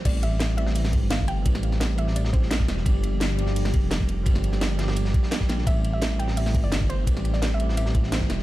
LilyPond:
<<
  \new Staff \with { instrumentName = "Synth pluck" } { \time 4/4 \key a \phrygian \tempo 4 = 171 d''8 e''4 e''4. f''8 g''8~ | g''4. e''8 d''8 c''4.~ | c''4. r2 r8 | r1 |
e''8. e''8. g''8 e''8. d''8. c''8~ | c''8. d''16~ \tuplet 3/2 { d''8 e''4 } e''4 c''4 | }
  \new Staff \with { instrumentName = "Tine electric piano" } { \time 4/4 \key a \phrygian <e g a c' g'>4. <e g a c' g'>2~ <e g a c' g'>8 | <e g a c' g'>4. <e g a c' g'>2~ <e g a c' g'>8 | <f g bes d' g'>4. <f g bes d' g'>2~ <f g bes d' g'>8 | <f g bes d' g'>4. <f g bes d' g'>2 <f g bes d' g'>8 |
<e g a c' g'>4. <e g a c' g'>2~ <e g a c' g'>8 | <e g a c' g'>4. <e g a c' g'>2~ <e g a c' g'>8 | }
  \new Staff \with { instrumentName = "Detuned saw bass" } { \clef bass \time 4/4 \key a \phrygian a,,2~ a,,8. g,,4~ g,,16 | a,,2~ a,,8 a,,4 e,,8 | g,,2~ g,,8. f,,4~ f,,16 | g,,2~ g,,8 r4 bes,,8 |
a,,2~ a,,8. g,,4~ g,,16 | a,,2~ a,,8 a,,4 e,,8 | }
  \new DrumStaff \with { instrumentName = "Drums" } \drummode { \time 4/4 <cymc hh bd cymr>8 <hh cymr>8 <hh cymr sn>16 cymr16 <hh cymr>16 sn16 <hh hho cymr>16 sn16 <hh bd cymr>8 <hh cymr sn>16 bd16 <hh cymr>8 | <hh bd cymr>16 sn16 <hh cymr>16 sn16 <hh cymr sn>8 <hh cymr>16 sn16 <hh cymr>16 sn16 <hh bd cymr>16 sn16 <hh cymr sn>16 <bd sn>16 <hh cymr sn>16 sn16 | <hh bd cymr>8 <hh cymr>8 <hh cymr sn>16 cymr16 <hh cymr>16 sn16 <hh hho cymr>16 sn16 <hh bd cymr>8 <hh cymr sn>16 bd16 <hh cymr>8 | <hh bd cymr>16 sn16 <hh cymr>16 sn16 <hh cymr sn>8 <hh cymr sn>16 <cymr sn>16 <hh cymr>16 sn16 <hh bd cymr>16 sn16 <hh cymr sn>16 <bd sn>16 <hh cymr sn>16 sn16 |
<hh bd cymr>8 <hh cymr>8 <hh cymr sn>16 cymr16 <hh cymr>16 sn16 <hh hho cymr>16 sn16 <hh bd cymr>8 <hh cymr sn>16 bd16 <hh cymr>8 | <hh bd cymr>16 sn16 <hh cymr>16 sn16 <hh cymr sn>8 <hh cymr>16 sn16 <hh cymr>16 sn16 <hh bd cymr>16 sn16 <hh cymr sn>16 <bd sn>16 <hh cymr sn>16 sn16 | }
>>